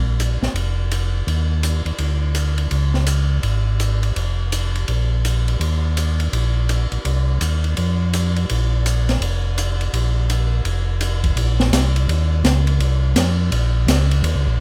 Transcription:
0.00 0.38 A#1 medium
0.20 hi-hat pedal soft
0.20 ride soft
0.42 0.48 A#1 soft
0.42 snare soft
0.54 1.23 F1 medium
0.54 ride soft
0.91 hi-hat pedal soft
0.91 ride medium
1.27 1.82 D#2 medium
1.27 ride soft
1.63 hi-hat pedal soft
1.63 ride medium
1.85 1.92 D#2 soft
1.85 ride soft
1.98 2.68 D2 medium
1.98 ride soft
2.35 hi-hat pedal soft
2.35 ride medium
2.58 ride soft
2.71 3.40 C#2 medium
2.71 ride soft
2.94 snare soft
3.07 hi-hat pedal soft
3.07 ride medium
3.43 4.12 G#1 medium
3.43 ride soft
3.80 hi-hat pedal soft
3.80 ride soft
4.03 ride soft
4.16 4.85 F1 medium
4.16 ride soft
4.52 hi-hat pedal soft
4.52 ride medium
4.75 ride soft
4.88 5.57 A#1 medium
4.88 ride soft
5.25 hi-hat pedal soft
5.25 ride medium
5.48 ride soft
5.60 6.29 D#2 medium
5.60 ride soft
5.97 hi-hat pedal medium
5.97 ride medium
6.20 ride soft
6.32 6.88 A#1 medium
6.32 ride soft
6.69 hi-hat pedal soft
6.69 ride medium
6.92 6.98 A#1 soft
6.92 ride soft
7.05 7.39 C2 medium
7.05 ride soft
7.41 7.75 D#2 medium
7.41 hi-hat pedal soft
7.41 ride medium
7.64 ride soft
7.77 8.46 F2 medium
7.77 ride soft
8.13 hi-hat pedal soft
8.13 ride medium
8.36 ride soft
8.49 9.18 A#1 medium
8.49 ride soft
8.86 hi-hat pedal soft
8.86 ride medium
9.09 snare soft
9.09 ride soft
9.21 9.89 F1 medium
9.21 ride soft
9.58 hi-hat pedal soft
9.58 ride medium
9.81 ride soft
9.93 10.62 A#1 medium
9.93 ride soft
10.30 hi-hat pedal soft
10.30 ride medium
10.64 11.33 F1 medium
10.64 ride soft
11.01 hi-hat pedal soft
11.01 ride medium
11.24 kick soft
11.24 ride soft
11.36 11.71 A#1 medium
11.36 ride medium
11.60 snare soft
11.72 12.07 C2 medium
11.72 snare medium
11.72 hi-hat pedal soft
11.72 ride medium
11.96 ride soft
12.08 12.43 D#2 medium
12.08 ride soft
12.44 12.79 C#2 medium
12.44 snare medium
12.44 hi-hat pedal medium
12.44 ride medium
12.67 ride soft
12.79 13.15 C2 medium
12.79 ride soft
13.15 13.51 F2 medium
13.15 snare medium
13.15 hi-hat pedal medium
13.15 ride medium
13.51 13.87 A#1 medium
13.51 ride medium
13.87 14.22 C#2 medium
13.87 snare medium
13.87 hi-hat pedal medium
13.87 ride medium
14.11 ride soft
14.23 14.35 D#2 medium
14.23 ride soft
14.35 14.48 C#2 medium
14.47 14.59 A#1 medium

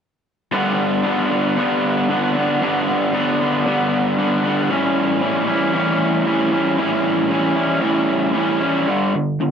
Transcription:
0.52 1.56 G2 medium
0.52 1.02 D3 medium
0.52 1.04 G3 loud
0.52 1.04 B3 medium
0.52 1.05 D4 loud
1.03 1.56 D3 medium
1.03 1.31 G3 medium
1.03 1.30 B3 medium
1.03 1.29 D4 medium
1.30 1.57 G3 medium
1.30 1.57 B3 medium
1.30 1.57 D4 medium
1.57 2.35 G2 medium
1.57 2.08 D3 medium
1.57 2.10 G3 medium
1.57 2.09 B3 medium
1.57 2.10 D4 medium
2.09 2.60 D3 medium
2.09 2.36 G3 medium
2.09 2.36 B3 medium
2.09 2.34 D4 medium
2.35 2.62 G3 soft
2.35 2.61 B3 medium
2.35 2.62 D4 medium
2.61 3.39 G2 medium
2.61 3.12 D3 medium
2.61 3.13 G3 medium
2.61 3.13 B3 loud
2.61 3.13 D4 medium
3.13 3.65 D3 medium
3.13 3.41 G3 medium
3.13 3.39 B3 medium
3.13 3.39 D4 medium
3.40 3.66 G3 medium
3.40 3.65 B3 medium
3.40 3.66 D4 medium
3.65 4.44 G2 medium
3.65 4.17 D3 medium
3.65 4.18 G3 medium
3.65 4.18 B3 medium
3.65 4.18 D4 medium
4.18 4.68 D3 medium
4.18 4.45 G3 medium
4.18 4.43 B3 medium
4.18 4.42 D4 medium
4.43 4.70 G3 medium
4.43 4.69 B3 medium
4.43 4.68 D4 medium
4.70 5.52 A2 medium
4.70 5.21 E3 medium
4.70 5.21 G3 loud
4.70 5.22 C#4 loud
4.70 5.22 E4 medium
5.21 5.74 E3 medium
5.21 5.49 G3 medium
5.21 5.48 C#4 medium
5.21 5.47 E4 medium
5.47 5.74 G3 medium
5.47 5.74 C#4 medium
5.47 5.74 E4 medium
5.74 6.52 A2 medium
5.74 6.24 E3 medium
5.74 6.25 G3 medium
5.74 6.26 C#4 medium
5.74 6.26 E4 medium
6.25 6.77 E3 medium
6.25 6.53 G3 medium
6.25 6.51 C#4 medium
6.25 6.50 E4 medium
6.52 6.78 G3 medium
6.52 6.78 C#4 medium
6.52 6.78 E4 medium
6.77 7.57 A2 medium
6.77 7.29 E3 medium
6.77 7.30 G3 medium
6.77 7.30 C#4 loud
6.77 7.31 E4 loud
7.30 7.80 E3 medium
7.30 7.57 G3 medium
7.30 7.56 C#4 medium
7.30 7.55 E4 medium
7.56 7.80 G3 medium
7.56 7.81 C#4 medium
7.56 7.81 E4 medium
7.81 8.60 A2 medium
7.81 8.32 E3 medium
7.81 8.33 G3 medium
7.81 8.33 C#4 medium
7.81 8.34 E4 medium
8.33 8.85 E3 medium
8.33 8.61 G3 medium
8.33 8.60 C#4 medium
8.33 8.59 E4 medium
8.60 8.86 G3 medium
8.60 8.86 C#4 medium
8.60 8.86 E4 medium
8.87 9.12 G2 medium
8.87 9.12 D3 medium
8.87 9.12 G3 medium
9.14 9.38 G2 medium
9.14 9.38 D3 medium
9.40 9.51 G2 medium
9.40 9.51 D3 medium

